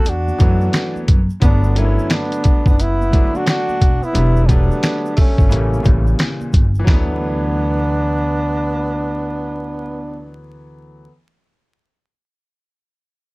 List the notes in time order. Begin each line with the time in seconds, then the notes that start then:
Already playing: E2 A4
0.05 D4, closed hi-hat, shaker
0.09 F#4
0.28 high conga, shaker
0.38 F#2 E3 F#3 A3 B3, kick, closed hi-hat, low conga, shaker
0.61 high conga, shaker
0.73 snare, closed hi-hat, shaker
0.96 high conga, shaker
1.08 F#2, kick, closed hi-hat, low conga, shaker
1.30 shaker
1.40 G1 D3 F#3 A3 B3, kick, closed hi-hat, shaker
1.44 D4
1.64 shaker
1.74 D3 F#3 A3 A#3 C#4, closed hi-hat, shaker
1.79 E4
1.84 B3
1.99 shaker
2.10 B3 D4, snare, closed hi-hat, high conga, shaker
2.32 closed hi-hat, shaker
2.44 kick, closed hi-hat, low conga, shaker
2.66 F#1 B3 D4, kick, shaker
2.78 B3 E4, closed hi-hat, shaker
3.02 high conga, shaker
3.11 D3 F#3 A3 D4, kick, closed hi-hat, low conga, shaker
3.35 D4 F#4, high conga, shaker
3.46 D4 F#4, snare, closed hi-hat, shaker
3.69 high conga, shaker
3.81 E1, kick, closed hi-hat, low conga, shaker
4.02 B3 E4, shaker
4.13 E1 D3 F#3 G3 B3, closed hi-hat, shaker
4.37 shaker
4.44 D3 A3 C#4
4.48 F#3 G3 A3 B3 D4, kick, closed hi-hat, shaker
4.71 shaker
4.83 snare, closed hi-hat, high conga, shaker
5.06 shaker
5.16 A3 C#4, kick, open hi-hat, high conga, low conga, shaker
5.38 G1, kick, shaker
5.49 A1 C#3 E3 G3 A#3, closed hi-hat, shaker
5.74 high conga, shaker
5.83 A1 A#2 C#3 E3 G3, kick, closed hi-hat, low conga, shaker
6.07 high conga, shaker
6.19 snare, closed hi-hat, shaker
6.41 high conga, shaker
6.53 G1, kick, closed hi-hat, low conga, shaker
6.75 shaker
6.79 E3
6.84 D2 F#3 B3, kick, snare, high conga
6.89 A3 D4
6.94 B3